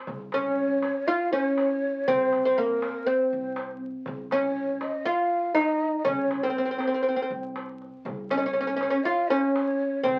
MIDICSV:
0, 0, Header, 1, 5, 480
1, 0, Start_track
1, 0, Tempo, 498753
1, 70, Time_signature, 4, 2, 24, 8
1, 9810, End_track
2, 0, Start_track
2, 0, Title_t, "Ney"
2, 0, Program_c, 0, 77
2, 318, Note_on_c, 0, 73, 76
2, 1036, Note_on_c, 0, 77, 80
2, 1050, Note_off_c, 0, 73, 0
2, 1264, Note_off_c, 0, 77, 0
2, 1270, Note_on_c, 0, 72, 88
2, 1395, Note_off_c, 0, 72, 0
2, 1395, Note_on_c, 0, 73, 88
2, 2004, Note_on_c, 0, 72, 82
2, 2018, Note_off_c, 0, 73, 0
2, 2353, Note_off_c, 0, 72, 0
2, 2359, Note_on_c, 0, 72, 63
2, 2476, Note_on_c, 0, 70, 72
2, 2491, Note_off_c, 0, 72, 0
2, 2962, Note_on_c, 0, 72, 62
2, 2977, Note_off_c, 0, 70, 0
2, 3677, Note_off_c, 0, 72, 0
2, 4159, Note_on_c, 0, 73, 77
2, 4632, Note_on_c, 0, 75, 74
2, 4646, Note_off_c, 0, 73, 0
2, 4874, Note_on_c, 0, 77, 86
2, 4888, Note_off_c, 0, 75, 0
2, 5357, Note_on_c, 0, 75, 79
2, 5372, Note_off_c, 0, 77, 0
2, 5751, Note_off_c, 0, 75, 0
2, 5757, Note_on_c, 0, 75, 55
2, 5833, Note_on_c, 0, 73, 80
2, 5847, Note_off_c, 0, 75, 0
2, 6190, Note_on_c, 0, 72, 67
2, 6204, Note_off_c, 0, 73, 0
2, 7150, Note_off_c, 0, 72, 0
2, 7996, Note_on_c, 0, 73, 75
2, 8049, Note_on_c, 0, 75, 64
2, 8063, Note_off_c, 0, 73, 0
2, 8110, Note_on_c, 0, 73, 79
2, 8124, Note_off_c, 0, 75, 0
2, 8700, Note_on_c, 0, 77, 83
2, 8714, Note_off_c, 0, 73, 0
2, 8935, Note_on_c, 0, 72, 86
2, 8949, Note_off_c, 0, 77, 0
2, 9050, Note_off_c, 0, 72, 0
2, 9050, Note_on_c, 0, 73, 86
2, 9664, Note_off_c, 0, 73, 0
2, 9664, Note_on_c, 0, 73, 76
2, 9698, Note_on_c, 0, 72, 82
2, 9708, Note_off_c, 0, 73, 0
2, 9810, Note_off_c, 0, 72, 0
2, 9810, End_track
3, 0, Start_track
3, 0, Title_t, "Oud"
3, 0, Program_c, 1, 24
3, 326, Note_on_c, 1, 61, 84
3, 1031, Note_off_c, 1, 61, 0
3, 1035, Note_on_c, 1, 65, 97
3, 1272, Note_off_c, 1, 65, 0
3, 1276, Note_on_c, 1, 61, 81
3, 1996, Note_off_c, 1, 61, 0
3, 1999, Note_on_c, 1, 60, 88
3, 2349, Note_off_c, 1, 60, 0
3, 2361, Note_on_c, 1, 60, 72
3, 2479, Note_off_c, 1, 60, 0
3, 2481, Note_on_c, 1, 58, 77
3, 2945, Note_off_c, 1, 58, 0
3, 2949, Note_on_c, 1, 60, 73
3, 3632, Note_off_c, 1, 60, 0
3, 4159, Note_on_c, 1, 61, 84
3, 4837, Note_off_c, 1, 61, 0
3, 4865, Note_on_c, 1, 65, 96
3, 5333, Note_off_c, 1, 65, 0
3, 5337, Note_on_c, 1, 63, 88
3, 5815, Note_off_c, 1, 63, 0
3, 5819, Note_on_c, 1, 61, 86
3, 6188, Note_off_c, 1, 61, 0
3, 6192, Note_on_c, 1, 60, 67
3, 6243, Note_off_c, 1, 60, 0
3, 6254, Note_on_c, 1, 60, 44
3, 6322, Note_off_c, 1, 60, 0
3, 6333, Note_on_c, 1, 60, 49
3, 6391, Note_off_c, 1, 60, 0
3, 6403, Note_on_c, 1, 60, 45
3, 6446, Note_off_c, 1, 60, 0
3, 6458, Note_on_c, 1, 60, 48
3, 6516, Note_off_c, 1, 60, 0
3, 6528, Note_on_c, 1, 60, 39
3, 6606, Note_off_c, 1, 60, 0
3, 6615, Note_on_c, 1, 60, 46
3, 6670, Note_off_c, 1, 60, 0
3, 6681, Note_on_c, 1, 60, 42
3, 6751, Note_off_c, 1, 60, 0
3, 6762, Note_on_c, 1, 60, 49
3, 6807, Note_off_c, 1, 60, 0
3, 6819, Note_on_c, 1, 60, 46
3, 6882, Note_off_c, 1, 60, 0
3, 6893, Note_on_c, 1, 60, 53
3, 6940, Note_off_c, 1, 60, 0
3, 6951, Note_on_c, 1, 60, 48
3, 7033, Note_off_c, 1, 60, 0
3, 7997, Note_on_c, 1, 61, 85
3, 8049, Note_off_c, 1, 61, 0
3, 8061, Note_on_c, 1, 61, 58
3, 8128, Note_off_c, 1, 61, 0
3, 8142, Note_on_c, 1, 61, 57
3, 8201, Note_off_c, 1, 61, 0
3, 8213, Note_on_c, 1, 61, 50
3, 8271, Note_off_c, 1, 61, 0
3, 8282, Note_on_c, 1, 61, 58
3, 8334, Note_off_c, 1, 61, 0
3, 8345, Note_on_c, 1, 61, 54
3, 8415, Note_off_c, 1, 61, 0
3, 8435, Note_on_c, 1, 61, 61
3, 8483, Note_off_c, 1, 61, 0
3, 8494, Note_on_c, 1, 61, 53
3, 8557, Note_off_c, 1, 61, 0
3, 8569, Note_on_c, 1, 61, 63
3, 8634, Note_off_c, 1, 61, 0
3, 8712, Note_on_c, 1, 65, 89
3, 8949, Note_off_c, 1, 65, 0
3, 8953, Note_on_c, 1, 61, 86
3, 9654, Note_off_c, 1, 61, 0
3, 9658, Note_on_c, 1, 60, 89
3, 9810, Note_off_c, 1, 60, 0
3, 9810, End_track
4, 0, Start_track
4, 0, Title_t, "Upright bass"
4, 0, Program_c, 2, 32
4, 74, Note_on_c, 2, 36, 89
4, 808, Note_off_c, 2, 36, 0
4, 1995, Note_on_c, 2, 36, 83
4, 2729, Note_off_c, 2, 36, 0
4, 3201, Note_on_c, 2, 36, 89
4, 3749, Note_off_c, 2, 36, 0
4, 3919, Note_on_c, 2, 36, 91
4, 4651, Note_off_c, 2, 36, 0
4, 5830, Note_on_c, 2, 36, 78
4, 6566, Note_off_c, 2, 36, 0
4, 7029, Note_on_c, 2, 36, 88
4, 7581, Note_off_c, 2, 36, 0
4, 7747, Note_on_c, 2, 36, 89
4, 8483, Note_off_c, 2, 36, 0
4, 9674, Note_on_c, 2, 36, 83
4, 9810, Note_off_c, 2, 36, 0
4, 9810, End_track
5, 0, Start_track
5, 0, Title_t, "Darbuka"
5, 69, Note_on_c, 9, 64, 79
5, 165, Note_off_c, 9, 64, 0
5, 309, Note_on_c, 9, 63, 65
5, 405, Note_off_c, 9, 63, 0
5, 433, Note_on_c, 9, 62, 20
5, 529, Note_off_c, 9, 62, 0
5, 673, Note_on_c, 9, 62, 21
5, 769, Note_off_c, 9, 62, 0
5, 794, Note_on_c, 9, 63, 65
5, 890, Note_off_c, 9, 63, 0
5, 1156, Note_on_c, 9, 62, 24
5, 1253, Note_off_c, 9, 62, 0
5, 1516, Note_on_c, 9, 63, 63
5, 1613, Note_off_c, 9, 63, 0
5, 1637, Note_on_c, 9, 62, 24
5, 1733, Note_off_c, 9, 62, 0
5, 1998, Note_on_c, 9, 64, 84
5, 2094, Note_off_c, 9, 64, 0
5, 2239, Note_on_c, 9, 63, 65
5, 2335, Note_off_c, 9, 63, 0
5, 2363, Note_on_c, 9, 62, 24
5, 2460, Note_off_c, 9, 62, 0
5, 2601, Note_on_c, 9, 62, 24
5, 2698, Note_off_c, 9, 62, 0
5, 2716, Note_on_c, 9, 63, 65
5, 2812, Note_off_c, 9, 63, 0
5, 3073, Note_on_c, 9, 62, 25
5, 3169, Note_off_c, 9, 62, 0
5, 3309, Note_on_c, 9, 62, 26
5, 3405, Note_off_c, 9, 62, 0
5, 3428, Note_on_c, 9, 63, 65
5, 3524, Note_off_c, 9, 63, 0
5, 3548, Note_on_c, 9, 62, 26
5, 3644, Note_off_c, 9, 62, 0
5, 3905, Note_on_c, 9, 64, 81
5, 4002, Note_off_c, 9, 64, 0
5, 4149, Note_on_c, 9, 63, 69
5, 4246, Note_off_c, 9, 63, 0
5, 4266, Note_on_c, 9, 62, 24
5, 4363, Note_off_c, 9, 62, 0
5, 4513, Note_on_c, 9, 62, 24
5, 4610, Note_off_c, 9, 62, 0
5, 4628, Note_on_c, 9, 63, 68
5, 4724, Note_off_c, 9, 63, 0
5, 4994, Note_on_c, 9, 62, 24
5, 5090, Note_off_c, 9, 62, 0
5, 5236, Note_on_c, 9, 62, 24
5, 5333, Note_off_c, 9, 62, 0
5, 5355, Note_on_c, 9, 63, 66
5, 5452, Note_off_c, 9, 63, 0
5, 5480, Note_on_c, 9, 62, 25
5, 5576, Note_off_c, 9, 62, 0
5, 5834, Note_on_c, 9, 64, 87
5, 5931, Note_off_c, 9, 64, 0
5, 6070, Note_on_c, 9, 63, 71
5, 6166, Note_off_c, 9, 63, 0
5, 6188, Note_on_c, 9, 62, 23
5, 6284, Note_off_c, 9, 62, 0
5, 6309, Note_on_c, 9, 62, 25
5, 6406, Note_off_c, 9, 62, 0
5, 6425, Note_on_c, 9, 62, 23
5, 6522, Note_off_c, 9, 62, 0
5, 6548, Note_on_c, 9, 63, 66
5, 6645, Note_off_c, 9, 63, 0
5, 6674, Note_on_c, 9, 62, 28
5, 6770, Note_off_c, 9, 62, 0
5, 6911, Note_on_c, 9, 62, 25
5, 7008, Note_off_c, 9, 62, 0
5, 7035, Note_on_c, 9, 62, 25
5, 7131, Note_off_c, 9, 62, 0
5, 7152, Note_on_c, 9, 62, 25
5, 7249, Note_off_c, 9, 62, 0
5, 7273, Note_on_c, 9, 63, 63
5, 7369, Note_off_c, 9, 63, 0
5, 7397, Note_on_c, 9, 62, 26
5, 7494, Note_off_c, 9, 62, 0
5, 7522, Note_on_c, 9, 62, 28
5, 7619, Note_off_c, 9, 62, 0
5, 7756, Note_on_c, 9, 64, 84
5, 7853, Note_off_c, 9, 64, 0
5, 7992, Note_on_c, 9, 63, 64
5, 8088, Note_off_c, 9, 63, 0
5, 8109, Note_on_c, 9, 62, 23
5, 8205, Note_off_c, 9, 62, 0
5, 8357, Note_on_c, 9, 62, 24
5, 8453, Note_off_c, 9, 62, 0
5, 8477, Note_on_c, 9, 63, 63
5, 8573, Note_off_c, 9, 63, 0
5, 9078, Note_on_c, 9, 62, 26
5, 9174, Note_off_c, 9, 62, 0
5, 9197, Note_on_c, 9, 63, 67
5, 9293, Note_off_c, 9, 63, 0
5, 9325, Note_on_c, 9, 62, 27
5, 9421, Note_off_c, 9, 62, 0
5, 9682, Note_on_c, 9, 64, 82
5, 9778, Note_off_c, 9, 64, 0
5, 9810, End_track
0, 0, End_of_file